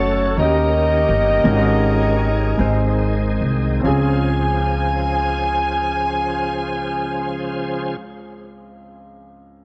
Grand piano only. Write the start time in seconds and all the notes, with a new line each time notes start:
Already playing: A3 C#4 F#4 A4
0.37 D#3 A#3 C#4 D#4 F#4
0.45 G4
1.44 G#2 G#3 C#4 D#4
2.57 G#2 G#3 C4 D#4 C5
3.80 C#2 C4 C#4
3.85 F4 G#4